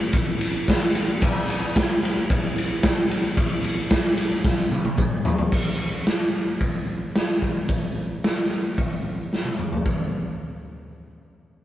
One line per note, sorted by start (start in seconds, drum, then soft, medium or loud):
0.13 kick loud
0.13 ride loud
0.13 tambourine soft
0.41 ride medium
0.41 tambourine medium
0.67 kick loud
0.67 snare loud
0.67 ride loud
0.67 tambourine medium
0.95 ride medium
0.95 tambourine medium
1.21 kick loud
1.21 tambourine medium
1.21 crash loud
1.48 ride medium
1.48 tambourine medium
1.75 kick loud
1.75 snare loud
1.75 ride loud
1.75 tambourine loud
2.03 ride medium
2.03 tambourine soft
2.29 kick loud
2.29 ride loud
2.29 tambourine soft
2.58 ride medium
2.58 tambourine medium
2.83 kick loud
2.83 snare loud
2.83 ride loud
2.83 tambourine medium
3.10 ride medium
3.10 tambourine medium
3.37 kick loud
3.37 ride loud
3.37 tambourine medium
3.64 ride medium
3.64 tambourine medium
3.90 kick loud
3.90 snare loud
3.90 ride loud
3.90 tambourine loud
4.18 ride medium
4.18 tambourine soft
4.45 kick loud
4.45 snare medium
4.45 tambourine soft
4.72 high tom medium
4.72 tambourine medium
4.85 high tom medium
4.97 kick loud
4.97 mid tom medium
4.97 tambourine medium
5.25 floor tom loud
5.25 tambourine medium
5.39 floor tom medium
5.52 kick loud
5.52 crash loud
6.07 snare loud
6.07 open hi-hat medium
6.61 kick loud
6.61 open hi-hat medium
7.15 snare loud
7.15 open hi-hat soft
7.42 kick medium
7.68 kick loud
7.68 open hi-hat medium
8.24 snare loud
8.24 open hi-hat medium
8.78 kick loud
8.78 open hi-hat medium
9.33 snare medium
9.45 high tom medium
9.59 mid tom medium
9.73 floor tom medium
9.86 kick loud